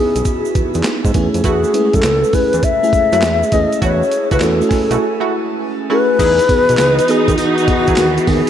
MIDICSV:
0, 0, Header, 1, 7, 480
1, 0, Start_track
1, 0, Key_signature, 4, "major"
1, 0, Tempo, 594059
1, 1164, Time_signature, 4, 2, 24, 8
1, 6867, End_track
2, 0, Start_track
2, 0, Title_t, "Alto flute"
2, 0, Program_c, 0, 73
2, 0, Note_on_c, 0, 68, 87
2, 454, Note_off_c, 0, 68, 0
2, 1176, Note_on_c, 0, 68, 87
2, 1577, Note_on_c, 0, 69, 96
2, 1589, Note_off_c, 0, 68, 0
2, 1895, Note_on_c, 0, 71, 102
2, 1907, Note_off_c, 0, 69, 0
2, 2133, Note_on_c, 0, 76, 117
2, 2145, Note_off_c, 0, 71, 0
2, 2852, Note_on_c, 0, 75, 97
2, 2864, Note_off_c, 0, 76, 0
2, 3089, Note_off_c, 0, 75, 0
2, 3095, Note_on_c, 0, 73, 96
2, 3463, Note_off_c, 0, 73, 0
2, 3497, Note_on_c, 0, 71, 88
2, 3578, Note_on_c, 0, 69, 85
2, 3590, Note_off_c, 0, 71, 0
2, 4291, Note_off_c, 0, 69, 0
2, 4787, Note_on_c, 0, 71, 122
2, 5742, Note_on_c, 0, 68, 99
2, 5754, Note_off_c, 0, 71, 0
2, 5944, Note_on_c, 0, 65, 73
2, 5957, Note_off_c, 0, 68, 0
2, 5984, Note_on_c, 0, 66, 107
2, 5996, Note_off_c, 0, 65, 0
2, 6695, Note_on_c, 0, 68, 86
2, 6707, Note_off_c, 0, 66, 0
2, 6867, Note_off_c, 0, 68, 0
2, 6867, End_track
3, 0, Start_track
3, 0, Title_t, "Analog polysynth"
3, 0, Program_c, 1, 90
3, 1165, Note_on_c, 1, 57, 85
3, 1169, Note_on_c, 1, 64, 79
3, 1170, Note_on_c, 1, 66, 102
3, 1392, Note_off_c, 1, 57, 0
3, 1394, Note_off_c, 1, 64, 0
3, 1395, Note_off_c, 1, 66, 0
3, 2525, Note_on_c, 1, 57, 77
3, 2526, Note_on_c, 1, 64, 68
3, 2529, Note_on_c, 1, 66, 82
3, 2639, Note_off_c, 1, 57, 0
3, 2640, Note_off_c, 1, 64, 0
3, 2641, Note_off_c, 1, 66, 0
3, 3083, Note_on_c, 1, 57, 86
3, 3085, Note_on_c, 1, 64, 86
3, 3088, Note_on_c, 1, 66, 104
3, 3262, Note_off_c, 1, 57, 0
3, 3263, Note_off_c, 1, 64, 0
3, 3264, Note_off_c, 1, 66, 0
3, 3484, Note_on_c, 1, 57, 82
3, 3487, Note_on_c, 1, 64, 77
3, 3490, Note_on_c, 1, 66, 96
3, 3598, Note_off_c, 1, 57, 0
3, 3600, Note_off_c, 1, 64, 0
3, 3601, Note_off_c, 1, 66, 0
3, 3964, Note_on_c, 1, 57, 84
3, 3967, Note_on_c, 1, 64, 74
3, 3967, Note_on_c, 1, 66, 83
3, 4078, Note_off_c, 1, 57, 0
3, 4080, Note_off_c, 1, 64, 0
3, 4080, Note_off_c, 1, 66, 0
3, 4203, Note_on_c, 1, 57, 83
3, 4206, Note_on_c, 1, 64, 72
3, 4208, Note_on_c, 1, 66, 94
3, 4318, Note_off_c, 1, 57, 0
3, 4319, Note_off_c, 1, 64, 0
3, 4321, Note_off_c, 1, 66, 0
3, 4765, Note_on_c, 1, 57, 78
3, 4766, Note_on_c, 1, 64, 80
3, 4769, Note_on_c, 1, 66, 92
3, 4942, Note_off_c, 1, 57, 0
3, 4943, Note_off_c, 1, 64, 0
3, 4945, Note_off_c, 1, 66, 0
3, 5002, Note_on_c, 1, 63, 87
3, 5005, Note_on_c, 1, 64, 90
3, 5007, Note_on_c, 1, 68, 101
3, 5231, Note_off_c, 1, 63, 0
3, 5232, Note_off_c, 1, 64, 0
3, 5233, Note_off_c, 1, 68, 0
3, 6365, Note_on_c, 1, 63, 75
3, 6368, Note_on_c, 1, 64, 75
3, 6369, Note_on_c, 1, 68, 83
3, 6479, Note_off_c, 1, 63, 0
3, 6480, Note_off_c, 1, 64, 0
3, 6481, Note_off_c, 1, 68, 0
3, 6867, End_track
4, 0, Start_track
4, 0, Title_t, "FM electric piano"
4, 0, Program_c, 2, 5
4, 0, Control_c, 2, 64, 127
4, 0, Note_on_c, 2, 59, 80
4, 0, Note_on_c, 2, 61, 72
4, 0, Note_on_c, 2, 63, 75
4, 0, Note_on_c, 2, 64, 81
4, 0, Note_on_c, 2, 66, 87
4, 0, Note_on_c, 2, 67, 66
4, 0, Note_on_c, 2, 68, 93
4, 601, Note_off_c, 2, 59, 0
4, 602, Note_off_c, 2, 63, 0
4, 605, Note_off_c, 2, 64, 0
4, 606, Note_off_c, 2, 68, 0
4, 927, Note_on_c, 2, 57, 91
4, 930, Note_off_c, 2, 61, 0
4, 930, Note_on_c, 2, 61, 80
4, 934, Note_on_c, 2, 64, 85
4, 936, Control_c, 2, 64, 0
4, 937, Note_on_c, 2, 68, 95
4, 939, Note_off_c, 2, 66, 0
4, 941, Note_off_c, 2, 67, 0
4, 1065, Control_c, 2, 64, 127
4, 1342, Note_off_c, 2, 57, 0
4, 1344, Note_off_c, 2, 61, 0
4, 1346, Note_off_c, 2, 64, 0
4, 1347, Note_off_c, 2, 68, 0
4, 1403, Note_on_c, 2, 56, 66
4, 1404, Note_on_c, 2, 61, 73
4, 1409, Note_on_c, 2, 64, 76
4, 1412, Note_on_c, 2, 71, 85
4, 1455, Note_on_c, 2, 57, 76
4, 1474, Note_off_c, 2, 56, 0
4, 1803, Note_off_c, 2, 61, 0
4, 1806, Note_off_c, 2, 64, 0
4, 1807, Note_off_c, 2, 71, 0
4, 1829, Note_off_c, 2, 57, 0
4, 1883, Note_on_c, 2, 57, 79
4, 1886, Note_on_c, 2, 61, 70
4, 1887, Note_on_c, 2, 64, 72
4, 1890, Note_on_c, 2, 68, 92
4, 2162, Note_off_c, 2, 57, 0
4, 2164, Note_off_c, 2, 61, 0
4, 2165, Note_off_c, 2, 64, 0
4, 2166, Note_off_c, 2, 68, 0
4, 2286, Note_on_c, 2, 57, 79
4, 2289, Note_on_c, 2, 61, 68
4, 2293, Note_on_c, 2, 64, 70
4, 2295, Note_on_c, 2, 68, 89
4, 2723, Note_off_c, 2, 57, 0
4, 2724, Note_off_c, 2, 61, 0
4, 2726, Note_off_c, 2, 64, 0
4, 2728, Note_off_c, 2, 68, 0
4, 2847, Note_on_c, 2, 57, 75
4, 2850, Note_on_c, 2, 61, 80
4, 2855, Note_on_c, 2, 64, 77
4, 2858, Note_on_c, 2, 68, 88
4, 3403, Note_off_c, 2, 57, 0
4, 3405, Note_off_c, 2, 61, 0
4, 3407, Note_off_c, 2, 64, 0
4, 3408, Note_off_c, 2, 68, 0
4, 3565, Note_on_c, 2, 57, 75
4, 3566, Note_on_c, 2, 61, 76
4, 3571, Note_on_c, 2, 64, 70
4, 3573, Note_on_c, 2, 66, 87
4, 3685, Note_off_c, 2, 57, 0
4, 3685, Note_off_c, 2, 61, 0
4, 3687, Note_off_c, 2, 64, 0
4, 3689, Note_off_c, 2, 66, 0
4, 3727, Note_on_c, 2, 57, 86
4, 3731, Note_on_c, 2, 61, 80
4, 3733, Note_on_c, 2, 64, 75
4, 3737, Note_on_c, 2, 66, 76
4, 3766, Note_off_c, 2, 66, 0
4, 3790, Note_on_c, 2, 80, 91
4, 4442, Note_off_c, 2, 57, 0
4, 4444, Note_off_c, 2, 61, 0
4, 4445, Note_off_c, 2, 64, 0
4, 4474, Note_off_c, 2, 80, 0
4, 4766, Note_on_c, 2, 57, 82
4, 4772, Note_on_c, 2, 61, 75
4, 4773, Note_on_c, 2, 64, 72
4, 4776, Note_on_c, 2, 68, 92
4, 4965, Note_off_c, 2, 57, 0
4, 4968, Note_off_c, 2, 61, 0
4, 4969, Note_off_c, 2, 64, 0
4, 4970, Note_off_c, 2, 68, 0
4, 5015, Control_c, 2, 64, 0
4, 5158, Control_c, 2, 64, 127
4, 5245, Note_on_c, 2, 59, 78
4, 5246, Note_on_c, 2, 63, 77
4, 5250, Note_on_c, 2, 66, 69
4, 5252, Note_on_c, 2, 68, 84
4, 5643, Note_off_c, 2, 59, 0
4, 5644, Note_off_c, 2, 63, 0
4, 5646, Note_off_c, 2, 66, 0
4, 5647, Note_off_c, 2, 68, 0
4, 5727, Note_on_c, 2, 59, 79
4, 5727, Note_on_c, 2, 63, 74
4, 5731, Note_on_c, 2, 66, 69
4, 5737, Note_on_c, 2, 68, 86
4, 6124, Note_off_c, 2, 59, 0
4, 6124, Note_off_c, 2, 63, 0
4, 6126, Note_off_c, 2, 66, 0
4, 6129, Note_off_c, 2, 68, 0
4, 6209, Note_on_c, 2, 59, 79
4, 6211, Note_on_c, 2, 63, 69
4, 6215, Note_on_c, 2, 66, 78
4, 6219, Note_on_c, 2, 68, 88
4, 6605, Note_off_c, 2, 59, 0
4, 6606, Note_off_c, 2, 63, 0
4, 6608, Note_off_c, 2, 66, 0
4, 6610, Note_off_c, 2, 68, 0
4, 6685, Note_on_c, 2, 59, 82
4, 6687, Note_on_c, 2, 63, 73
4, 6689, Note_on_c, 2, 66, 77
4, 6692, Note_on_c, 2, 68, 88
4, 6867, Note_off_c, 2, 59, 0
4, 6867, Note_off_c, 2, 63, 0
4, 6867, Note_off_c, 2, 66, 0
4, 6867, Note_off_c, 2, 68, 0
4, 6867, End_track
5, 0, Start_track
5, 0, Title_t, "String section"
5, 0, Program_c, 3, 48
5, 5000, Note_on_c, 3, 52, 97
5, 5001, Note_on_c, 3, 59, 82
5, 5002, Note_on_c, 3, 63, 101
5, 6867, Note_off_c, 3, 52, 0
5, 6867, Note_off_c, 3, 59, 0
5, 6867, Note_off_c, 3, 63, 0
5, 6867, End_track
6, 0, Start_track
6, 0, Title_t, "Analog synth bass"
6, 0, Program_c, 4, 38
6, 125, Note_on_c, 4, 35, 86
6, 181, Note_off_c, 4, 35, 0
6, 445, Note_on_c, 4, 40, 53
6, 509, Note_off_c, 4, 40, 0
6, 608, Note_on_c, 4, 40, 89
6, 663, Note_off_c, 4, 40, 0
6, 845, Note_on_c, 4, 44, 98
6, 901, Note_off_c, 4, 44, 0
6, 927, Note_on_c, 4, 40, 98
6, 1039, Note_off_c, 4, 40, 0
6, 1088, Note_on_c, 4, 41, 93
6, 1143, Note_off_c, 4, 41, 0
6, 1165, Note_on_c, 4, 40, 107
6, 1334, Note_off_c, 4, 40, 0
6, 1568, Note_on_c, 4, 42, 79
6, 1623, Note_off_c, 4, 42, 0
6, 1645, Note_on_c, 4, 37, 91
6, 1813, Note_off_c, 4, 37, 0
6, 2052, Note_on_c, 4, 40, 101
6, 2105, Note_off_c, 4, 40, 0
6, 2366, Note_on_c, 4, 42, 51
6, 2430, Note_off_c, 4, 42, 0
6, 2525, Note_on_c, 4, 42, 89
6, 2608, Note_on_c, 4, 40, 110
6, 2620, Note_off_c, 4, 42, 0
6, 2775, Note_off_c, 4, 40, 0
6, 2845, Note_on_c, 4, 40, 85
6, 2957, Note_off_c, 4, 40, 0
6, 3085, Note_on_c, 4, 40, 112
6, 3253, Note_off_c, 4, 40, 0
6, 3488, Note_on_c, 4, 37, 92
6, 3543, Note_off_c, 4, 37, 0
6, 3565, Note_on_c, 4, 40, 94
6, 3734, Note_off_c, 4, 40, 0
6, 3963, Note_on_c, 4, 35, 90
6, 4020, Note_off_c, 4, 35, 0
6, 5005, Note_on_c, 4, 40, 107
6, 5173, Note_off_c, 4, 40, 0
6, 5408, Note_on_c, 4, 35, 88
6, 5463, Note_off_c, 4, 35, 0
6, 5486, Note_on_c, 4, 37, 88
6, 5654, Note_off_c, 4, 37, 0
6, 5883, Note_on_c, 4, 39, 95
6, 5939, Note_off_c, 4, 39, 0
6, 6204, Note_on_c, 4, 40, 50
6, 6269, Note_off_c, 4, 40, 0
6, 6366, Note_on_c, 4, 40, 96
6, 6422, Note_off_c, 4, 40, 0
6, 6447, Note_on_c, 4, 39, 93
6, 6615, Note_off_c, 4, 39, 0
6, 6687, Note_on_c, 4, 39, 88
6, 6799, Note_off_c, 4, 39, 0
6, 6867, End_track
7, 0, Start_track
7, 0, Title_t, "Drums"
7, 127, Note_on_c, 9, 42, 55
7, 127, Note_on_c, 9, 82, 60
7, 202, Note_off_c, 9, 82, 0
7, 202, Note_on_c, 9, 82, 73
7, 204, Note_on_c, 9, 36, 87
7, 206, Note_off_c, 9, 42, 0
7, 206, Note_on_c, 9, 42, 75
7, 283, Note_off_c, 9, 82, 0
7, 285, Note_off_c, 9, 36, 0
7, 287, Note_off_c, 9, 42, 0
7, 365, Note_on_c, 9, 82, 49
7, 445, Note_off_c, 9, 82, 0
7, 445, Note_on_c, 9, 82, 50
7, 446, Note_on_c, 9, 36, 103
7, 446, Note_on_c, 9, 42, 65
7, 526, Note_off_c, 9, 82, 0
7, 527, Note_off_c, 9, 36, 0
7, 527, Note_off_c, 9, 42, 0
7, 600, Note_on_c, 9, 82, 57
7, 606, Note_on_c, 9, 42, 55
7, 676, Note_on_c, 9, 39, 89
7, 681, Note_off_c, 9, 82, 0
7, 682, Note_on_c, 9, 38, 116
7, 683, Note_off_c, 9, 42, 0
7, 683, Note_on_c, 9, 42, 83
7, 683, Note_on_c, 9, 82, 56
7, 757, Note_off_c, 9, 39, 0
7, 763, Note_off_c, 9, 38, 0
7, 764, Note_off_c, 9, 42, 0
7, 764, Note_off_c, 9, 82, 0
7, 846, Note_on_c, 9, 36, 90
7, 850, Note_on_c, 9, 82, 55
7, 923, Note_on_c, 9, 42, 72
7, 926, Note_off_c, 9, 36, 0
7, 926, Note_off_c, 9, 82, 0
7, 926, Note_on_c, 9, 82, 47
7, 927, Note_on_c, 9, 36, 98
7, 1004, Note_off_c, 9, 42, 0
7, 1007, Note_off_c, 9, 82, 0
7, 1008, Note_off_c, 9, 36, 0
7, 1085, Note_on_c, 9, 42, 55
7, 1090, Note_on_c, 9, 82, 53
7, 1162, Note_off_c, 9, 42, 0
7, 1162, Note_on_c, 9, 42, 88
7, 1165, Note_on_c, 9, 36, 105
7, 1167, Note_off_c, 9, 82, 0
7, 1167, Note_on_c, 9, 82, 69
7, 1243, Note_off_c, 9, 42, 0
7, 1246, Note_off_c, 9, 36, 0
7, 1248, Note_off_c, 9, 82, 0
7, 1323, Note_on_c, 9, 82, 47
7, 1404, Note_off_c, 9, 82, 0
7, 1406, Note_on_c, 9, 82, 61
7, 1407, Note_on_c, 9, 42, 83
7, 1487, Note_off_c, 9, 82, 0
7, 1488, Note_off_c, 9, 42, 0
7, 1563, Note_on_c, 9, 42, 50
7, 1567, Note_on_c, 9, 36, 94
7, 1573, Note_on_c, 9, 82, 49
7, 1638, Note_on_c, 9, 39, 102
7, 1644, Note_off_c, 9, 42, 0
7, 1644, Note_on_c, 9, 38, 124
7, 1648, Note_off_c, 9, 36, 0
7, 1648, Note_on_c, 9, 42, 80
7, 1650, Note_off_c, 9, 82, 0
7, 1650, Note_on_c, 9, 82, 77
7, 1719, Note_off_c, 9, 39, 0
7, 1725, Note_off_c, 9, 38, 0
7, 1728, Note_off_c, 9, 42, 0
7, 1730, Note_off_c, 9, 82, 0
7, 1809, Note_on_c, 9, 82, 46
7, 1883, Note_on_c, 9, 46, 62
7, 1886, Note_on_c, 9, 36, 92
7, 1889, Note_off_c, 9, 82, 0
7, 1889, Note_on_c, 9, 82, 52
7, 1964, Note_off_c, 9, 46, 0
7, 1967, Note_off_c, 9, 36, 0
7, 1970, Note_off_c, 9, 82, 0
7, 2044, Note_on_c, 9, 42, 55
7, 2051, Note_on_c, 9, 82, 58
7, 2123, Note_off_c, 9, 42, 0
7, 2123, Note_on_c, 9, 42, 77
7, 2124, Note_on_c, 9, 36, 89
7, 2129, Note_off_c, 9, 82, 0
7, 2129, Note_on_c, 9, 82, 75
7, 2204, Note_off_c, 9, 42, 0
7, 2205, Note_off_c, 9, 36, 0
7, 2210, Note_off_c, 9, 82, 0
7, 2293, Note_on_c, 9, 82, 50
7, 2366, Note_on_c, 9, 36, 101
7, 2369, Note_on_c, 9, 42, 68
7, 2372, Note_off_c, 9, 82, 0
7, 2372, Note_on_c, 9, 82, 49
7, 2447, Note_off_c, 9, 36, 0
7, 2450, Note_off_c, 9, 42, 0
7, 2453, Note_off_c, 9, 82, 0
7, 2525, Note_on_c, 9, 82, 54
7, 2529, Note_on_c, 9, 42, 60
7, 2601, Note_on_c, 9, 39, 91
7, 2605, Note_off_c, 9, 82, 0
7, 2607, Note_on_c, 9, 38, 117
7, 2608, Note_off_c, 9, 42, 0
7, 2608, Note_on_c, 9, 42, 79
7, 2608, Note_on_c, 9, 82, 58
7, 2682, Note_off_c, 9, 39, 0
7, 2688, Note_off_c, 9, 38, 0
7, 2689, Note_off_c, 9, 42, 0
7, 2689, Note_off_c, 9, 82, 0
7, 2772, Note_on_c, 9, 82, 56
7, 2843, Note_on_c, 9, 42, 75
7, 2847, Note_on_c, 9, 36, 98
7, 2852, Note_off_c, 9, 82, 0
7, 2852, Note_on_c, 9, 82, 43
7, 2924, Note_off_c, 9, 42, 0
7, 2927, Note_off_c, 9, 36, 0
7, 2933, Note_off_c, 9, 82, 0
7, 3009, Note_on_c, 9, 42, 49
7, 3011, Note_on_c, 9, 82, 56
7, 3086, Note_off_c, 9, 42, 0
7, 3086, Note_on_c, 9, 36, 109
7, 3086, Note_on_c, 9, 42, 79
7, 3091, Note_off_c, 9, 82, 0
7, 3091, Note_on_c, 9, 82, 68
7, 3166, Note_off_c, 9, 36, 0
7, 3167, Note_off_c, 9, 42, 0
7, 3172, Note_off_c, 9, 82, 0
7, 3256, Note_on_c, 9, 82, 45
7, 3325, Note_on_c, 9, 42, 90
7, 3331, Note_off_c, 9, 82, 0
7, 3331, Note_on_c, 9, 82, 63
7, 3406, Note_off_c, 9, 42, 0
7, 3412, Note_off_c, 9, 82, 0
7, 3484, Note_on_c, 9, 42, 52
7, 3487, Note_on_c, 9, 36, 99
7, 3491, Note_on_c, 9, 82, 52
7, 3557, Note_on_c, 9, 39, 93
7, 3563, Note_on_c, 9, 38, 115
7, 3565, Note_off_c, 9, 42, 0
7, 3567, Note_off_c, 9, 36, 0
7, 3567, Note_on_c, 9, 42, 92
7, 3570, Note_off_c, 9, 82, 0
7, 3570, Note_on_c, 9, 82, 77
7, 3638, Note_off_c, 9, 39, 0
7, 3644, Note_off_c, 9, 38, 0
7, 3647, Note_off_c, 9, 42, 0
7, 3651, Note_off_c, 9, 82, 0
7, 3728, Note_on_c, 9, 82, 50
7, 3803, Note_on_c, 9, 38, 65
7, 3803, Note_on_c, 9, 46, 66
7, 3804, Note_on_c, 9, 36, 94
7, 3808, Note_off_c, 9, 82, 0
7, 3808, Note_on_c, 9, 82, 55
7, 3884, Note_off_c, 9, 38, 0
7, 3884, Note_off_c, 9, 46, 0
7, 3885, Note_off_c, 9, 36, 0
7, 3889, Note_off_c, 9, 82, 0
7, 3966, Note_on_c, 9, 42, 55
7, 3969, Note_on_c, 9, 82, 60
7, 4047, Note_off_c, 9, 42, 0
7, 4050, Note_off_c, 9, 82, 0
7, 5005, Note_on_c, 9, 36, 113
7, 5005, Note_on_c, 9, 49, 111
7, 5006, Note_on_c, 9, 42, 85
7, 5006, Note_on_c, 9, 54, 70
7, 5008, Note_on_c, 9, 82, 70
7, 5086, Note_off_c, 9, 36, 0
7, 5086, Note_off_c, 9, 42, 0
7, 5086, Note_off_c, 9, 49, 0
7, 5087, Note_off_c, 9, 54, 0
7, 5089, Note_off_c, 9, 82, 0
7, 5165, Note_on_c, 9, 42, 56
7, 5171, Note_on_c, 9, 82, 46
7, 5245, Note_on_c, 9, 36, 104
7, 5246, Note_off_c, 9, 42, 0
7, 5246, Note_on_c, 9, 42, 87
7, 5246, Note_on_c, 9, 54, 65
7, 5252, Note_off_c, 9, 82, 0
7, 5326, Note_off_c, 9, 36, 0
7, 5327, Note_off_c, 9, 42, 0
7, 5327, Note_off_c, 9, 54, 0
7, 5405, Note_on_c, 9, 42, 55
7, 5414, Note_on_c, 9, 82, 49
7, 5475, Note_on_c, 9, 39, 98
7, 5481, Note_on_c, 9, 38, 112
7, 5483, Note_on_c, 9, 54, 88
7, 5484, Note_off_c, 9, 42, 0
7, 5484, Note_on_c, 9, 42, 85
7, 5490, Note_off_c, 9, 82, 0
7, 5490, Note_on_c, 9, 82, 72
7, 5556, Note_off_c, 9, 39, 0
7, 5562, Note_off_c, 9, 38, 0
7, 5564, Note_off_c, 9, 54, 0
7, 5565, Note_off_c, 9, 42, 0
7, 5571, Note_off_c, 9, 82, 0
7, 5645, Note_on_c, 9, 42, 54
7, 5653, Note_on_c, 9, 82, 52
7, 5722, Note_off_c, 9, 42, 0
7, 5722, Note_on_c, 9, 42, 61
7, 5724, Note_on_c, 9, 54, 62
7, 5733, Note_off_c, 9, 82, 0
7, 5735, Note_on_c, 9, 82, 60
7, 5803, Note_off_c, 9, 42, 0
7, 5805, Note_off_c, 9, 54, 0
7, 5816, Note_off_c, 9, 82, 0
7, 5882, Note_on_c, 9, 36, 95
7, 5883, Note_on_c, 9, 42, 54
7, 5893, Note_on_c, 9, 82, 62
7, 5962, Note_off_c, 9, 42, 0
7, 5962, Note_on_c, 9, 42, 73
7, 5963, Note_off_c, 9, 36, 0
7, 5963, Note_on_c, 9, 54, 69
7, 5967, Note_off_c, 9, 82, 0
7, 5967, Note_on_c, 9, 82, 74
7, 6042, Note_off_c, 9, 42, 0
7, 6044, Note_off_c, 9, 54, 0
7, 6048, Note_off_c, 9, 82, 0
7, 6123, Note_on_c, 9, 42, 49
7, 6128, Note_on_c, 9, 82, 47
7, 6204, Note_off_c, 9, 42, 0
7, 6204, Note_on_c, 9, 36, 109
7, 6204, Note_on_c, 9, 42, 66
7, 6209, Note_off_c, 9, 82, 0
7, 6285, Note_off_c, 9, 36, 0
7, 6285, Note_off_c, 9, 42, 0
7, 6362, Note_on_c, 9, 82, 57
7, 6365, Note_on_c, 9, 42, 64
7, 6366, Note_on_c, 9, 36, 90
7, 6435, Note_on_c, 9, 39, 100
7, 6441, Note_on_c, 9, 38, 112
7, 6442, Note_off_c, 9, 42, 0
7, 6442, Note_on_c, 9, 42, 82
7, 6443, Note_off_c, 9, 82, 0
7, 6443, Note_on_c, 9, 54, 100
7, 6447, Note_off_c, 9, 36, 0
7, 6447, Note_on_c, 9, 82, 57
7, 6516, Note_off_c, 9, 39, 0
7, 6522, Note_off_c, 9, 38, 0
7, 6523, Note_off_c, 9, 42, 0
7, 6524, Note_off_c, 9, 54, 0
7, 6528, Note_off_c, 9, 82, 0
7, 6607, Note_on_c, 9, 42, 48
7, 6608, Note_on_c, 9, 82, 55
7, 6685, Note_on_c, 9, 46, 73
7, 6687, Note_off_c, 9, 42, 0
7, 6687, Note_on_c, 9, 36, 93
7, 6689, Note_off_c, 9, 82, 0
7, 6689, Note_on_c, 9, 54, 74
7, 6766, Note_off_c, 9, 46, 0
7, 6767, Note_off_c, 9, 36, 0
7, 6770, Note_off_c, 9, 54, 0
7, 6867, End_track
0, 0, End_of_file